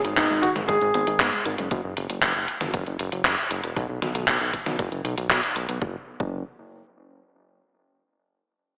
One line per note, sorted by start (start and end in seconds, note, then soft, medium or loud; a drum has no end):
0.04 0.15 G#1 medium
0.04 0.12 D#4 medium
0.04 closed hi-hat medium
0.16 0.28 G#1 loud
0.16 0.22 B3 loud
0.16 0.43 D#4 medium
0.16 kick loud
0.16 clap loud
0.16 closed hi-hat medium
0.30 0.41 G#1 medium
0.30 0.38 G#3 medium
0.42 0.51 D#3 loud
0.42 0.48 F#4 medium
0.42 kick medium
0.42 closed hi-hat medium
0.56 0.66 G#1 medium
0.56 0.64 G#3 medium
0.56 closed hi-hat medium
0.56 high tom medium
0.68 0.79 G#1 loud
0.68 0.76 D#3 medium
0.68 1.41 G#4 medium
0.68 kick loud
0.68 closed hi-hat medium
0.81 0.92 G#1 medium
0.81 0.89 G#3 medium
0.81 closed hi-hat soft
0.94 1.05 G#1 medium
0.94 1.02 B3 medium
0.94 closed hi-hat medium
1.07 1.18 G#1 medium
1.07 1.15 D#4 medium
1.07 closed hi-hat medium
1.20 1.30 G#1 loud
1.20 1.25 B3 loud
1.20 kick loud
1.20 clap loud
1.20 closed hi-hat medium
1.33 1.41 G#3 medium
1.33 closed hi-hat soft
1.45 1.56 G#1 medium
1.45 1.53 D#3 loud
1.45 closed hi-hat medium
1.58 1.69 F#1 medium
1.58 1.66 G#3 medium
1.58 closed hi-hat medium
1.71 1.82 F#1 loud
1.71 kick loud
1.71 closed hi-hat medium
1.84 1.95 F#1 medium
1.97 2.07 F#1 medium
1.97 closed hi-hat medium
2.10 2.20 F#1 medium
2.10 closed hi-hat medium
2.22 2.33 F#1 loud
2.22 kick loud
2.22 clap loud
2.22 closed hi-hat medium
2.35 2.46 F#1 medium
2.48 closed hi-hat medium
2.61 2.71 F#1 medium
2.61 closed hi-hat medium
2.61 high tom medium
2.74 2.84 F#1 loud
2.74 kick loud
2.74 closed hi-hat medium
2.86 2.97 F#1 medium
2.86 closed hi-hat soft
2.99 3.10 F#1 loud
2.99 closed hi-hat medium
3.12 3.23 F#1 medium
3.12 closed hi-hat medium
3.25 3.36 F#1 loud
3.25 kick loud
3.25 clap loud
3.25 closed hi-hat medium
3.38 closed hi-hat soft
3.51 3.61 F#1 medium
3.51 closed hi-hat medium
3.64 3.74 E1 medium
3.64 closed hi-hat medium
3.76 3.87 B1 loud
3.76 kick loud
3.76 closed hi-hat medium
3.89 4.00 B1 medium
4.02 4.12 B1 medium
4.02 closed hi-hat medium
4.02 high tom medium
4.15 4.25 B1 medium
4.15 closed hi-hat medium
4.28 4.38 B1 loud
4.28 kick loud
4.28 clap loud
4.28 closed hi-hat medium
4.40 4.51 B1 medium
4.40 closed hi-hat soft
4.53 kick medium
4.53 closed hi-hat medium
4.66 4.77 B1 medium
4.66 closed hi-hat medium
4.66 high tom medium
4.79 4.89 F#1 loud
4.79 kick loud
4.79 closed hi-hat medium
4.92 5.02 F#1 medium
4.92 closed hi-hat soft
5.05 5.15 B1 loud
5.05 closed hi-hat medium
5.17 5.28 B1 medium
5.17 closed hi-hat soft
5.30 5.41 B1 loud
5.30 kick loud
5.30 clap loud
5.30 closed hi-hat medium
5.43 closed hi-hat soft
5.56 5.66 B1 medium
5.56 closed hi-hat medium
5.69 5.79 B1 medium
5.69 closed hi-hat soft
5.82 5.96 F#1 loud
5.82 kick loud
6.20 6.44 F#1 loud
6.20 kick loud